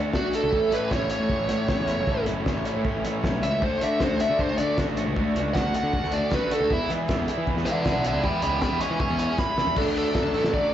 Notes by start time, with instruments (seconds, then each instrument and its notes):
Already playing: overdriven electric guitar D3 A3 D4 F#4
0.12 overdriven electric guitar D3 A3 D4 F#4, lead electric guitar F#4, kick, snare
0.32 overdriven electric guitar D3 A3 D4 F#4, lead electric guitar A4, closed hi-hat
0.44 picked electric bass C#2
0.51 picked electric bass A1, overdriven electric guitar A2 E3 A3 C#4 E4, kick
0.70 overdriven electric guitar A2 E3 A3 C#4 E4, picked electric bass A2, lead electric guitar B4, closed hi-hat
0.90 overdriven electric guitar A2 E3 A3 C#4 E4, lead electric guitar C#5, kick, snare
1.01 picked electric bass A1
1.10 overdriven electric guitar A2 E3 A3 C#4 E4, lead electric guitar C#5, closed hi-hat
1.20 picked electric bass A2
1.29 overdriven electric guitar A2 E3 A3 C#4 E4, kick
1.39 picked electric bass A1
1.49 overdriven electric guitar A2 E3 A3 C#4 E4, picked electric bass A2, closed hi-hat
1.67 overdriven electric guitar A2 E3 A3 C#4 E4, kick, snare
1.78 picked electric bass E2
1.86 overdriven electric guitar A2 E3 A3 C#4 E4, closed hi-hat
1.97 picked electric bass F#1
2.07 picked electric bass A1, overdriven electric guitar A2 E3 A3 C#4 E4, kick
2.26 picked electric bass F#1, overdriven electric guitar A2 E3 A3 C#4 E4, closed hi-hat
2.46 overdriven electric guitar A2 E3 A3 C#4 E4, kick, snare
2.56 picked electric bass A1
2.64 overdriven electric guitar A2 E3 A3 C#4 E4, closed hi-hat
2.76 picked electric bass A2
2.84 overdriven electric guitar A2 E3 A3 C#4 E4, kick
2.95 picked electric bass A1
3.04 picked electric bass A1, overdriven electric guitar A2 E3 A3 C#4 E4, closed hi-hat
3.23 picked electric bass B1, overdriven electric guitar A2 E3 A3 C#4 E4, kick, snare
3.42 picked electric bass C#2, overdriven electric guitar A2 E3 A3 C#4 E4, lead electric guitar E5, closed hi-hat
3.62 picked electric bass D2, overdriven electric guitar D3 A3 D4 F#4, lead electric guitar C5, kick
3.81 picked electric bass D3, overdriven electric guitar D3 A3 D4 F#4, lead electric guitar E5, closed hi-hat
4.00 overdriven electric guitar D3 A3 D4 F#4, lead electric guitar C5, kick, snare, clap
4.10 picked electric bass D2
4.20 overdriven electric guitar D3 A3 D4 F#4, lead electric guitar E5, clap, closed hi-hat
4.30 picked electric bass D3
4.39 overdriven electric guitar D3 A3 D4 F#4, lead electric guitar C5, kick
4.50 picked electric bass D2
4.58 overdriven electric guitar D3 A3 D4 F#4, picked electric bass D3, lead electric guitar D5, closed hi-hat
4.77 overdriven electric guitar D3 A3 D4 F#4, kick, snare, clap
4.88 picked electric bass A1
4.97 overdriven electric guitar D3 A3 D4 F#4, closed hi-hat
5.06 picked electric bass C#2
5.16 picked electric bass D2, overdriven electric guitar D3 A3 D4 F#4, kick
5.36 picked electric bass C#2, overdriven electric guitar D3 A3 D4 F#4, closed hi-hat
5.54 overdriven electric guitar D3 A3 D4 F#4, lead electric guitar F#5, kick, snare, clap
5.64 picked electric bass D2
5.74 overdriven electric guitar D3 A3 D4 F#4, lead electric guitar F#5, closed hi-hat
5.83 picked electric bass D3
5.93 overdriven electric guitar D3 A3 D4 F#4, kick
6.03 picked electric bass D2, snare
6.12 overdriven electric guitar D3 A3 D4 F#4, lead electric guitar D5, closed hi-hat
6.31 overdriven electric guitar D3 A3 D4 F#4, lead electric guitar B4, kick, snare, clap
6.51 overdriven electric guitar D3 A3 D4 F#4, lead electric guitar A4, closed hi-hat
6.60 picked electric bass D2
6.70 picked electric bass E2, overdriven electric guitar E3 G#3 B3 E4 G#4, lead electric guitar E4, kick
6.89 overdriven electric guitar E3 G#3 B3 E4 G#4, picked electric bass E3, closed hi-hat
7.09 overdriven electric guitar E3 G#3 B3 E4 G#4, kick, snare, clap
7.19 picked electric bass E2
7.28 overdriven electric guitar E3 G#3 B3 E4 G#4, closed hi-hat
7.38 picked electric bass E3
7.47 overdriven electric guitar E3 G#3 B3 E4 G#4, kick
7.56 picked electric bass E2, snare
7.66 overdriven electric guitar E3 G#3 B3 E4 G#4, picked electric bass E3, lead electric guitar D5 F#5, closed hi-hat
7.85 overdriven electric guitar E3 G#3 B3 E4 G#4, lead electric guitar D5 F#5, kick, snare, clap
7.95 picked electric bass B1
8.04 overdriven electric guitar E3 G#3 B3 E4 G#4, lead electric guitar D5 F#5, closed hi-hat
8.14 picked electric bass C#2
8.23 picked electric bass E2, overdriven electric guitar E3 G#3 B3 E4 G#4, lead electric guitar G5 B5, kick
8.42 picked electric bass C#2, overdriven electric guitar E3 G#3 B3 E4 G#4, lead electric guitar G5 B5, closed hi-hat
8.62 overdriven electric guitar E3 G#3 B3 E4 G#4, lead electric guitar G5 B5, kick, snare, clap
8.73 picked electric bass E2
8.80 overdriven electric guitar E3 G#3 B3 E4 G#4, lead electric guitar G#5 C#6, clap, closed hi-hat
8.90 picked electric bass E3
9.00 overdriven electric guitar E3 G#3 B3 E4 G#4, lead electric guitar G#5 C#6, kick
9.10 picked electric bass E2
9.19 overdriven electric guitar E3 G#3 B3 E4 G#4, lead electric guitar G#5 C#6, closed hi-hat
9.38 overdriven electric guitar E3 G#3 B3 E4 G#4, lead electric guitar B5, kick, snare, clap
9.57 overdriven electric guitar E3 G#3 B3 E4 G#4, snare
9.67 picked electric bass E2
9.74 picked electric bass D2, overdriven electric guitar D3 F#3 A3 D4 F#4 A4, tonewheel organ A4 D5 F#5 D6, lead electric guitar A4, synth bell D5, kick, crash
9.86 picked electric bass D2
9.95 lead electric guitar A4, open hi-hat
10.15 overdriven electric guitar D3 F#3 A3 D4 F#4 A4, kick, snare
10.23 picked electric bass D2
10.34 picked electric bass A1, overdriven electric guitar D3 F#3 A3 D4 F#4 A4, open hi-hat
10.44 snare
10.52 overdriven electric guitar D3 F#3 A3 D4 F#4 A4, lead electric guitar D5, kick